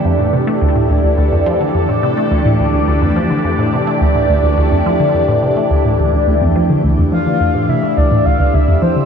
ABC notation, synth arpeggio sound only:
X:1
M:4/4
L:1/16
Q:1/4=106
K:Dm
V:1 name="Synth arpeggio sound" clef=bass
F,, A,, C, A, D,, A,, D,, D,, D,, F,, F, D, F,, A,, C, A, | D,, A,, D,, D,, D,, F,, F, D, F,, A,, C, A, D,, A,, D,, D,, | D,, F,, F, D, F,, A,, C, A, D,, A,, D,, D,, D,, F,, F, D, | D,, F,, F, D, F,, A,, C, A, D,, A,, D,, D,, D,, F,, F, D, |]